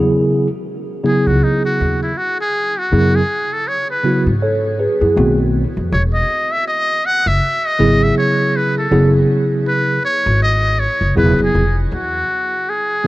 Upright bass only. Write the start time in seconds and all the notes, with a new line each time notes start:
Already playing: E2
1.27 C#2
1.81 D#2
2.93 F#2
4.27 G#2
5.01 F#2
5.17 B1
5.77 F2
5.92 E1
7.26 F#1
7.79 G#1
8.91 F#1
10.26 G#1
11.01 F#1
11.17 E1
11.39 F#1
11.55 F1
11.92 E2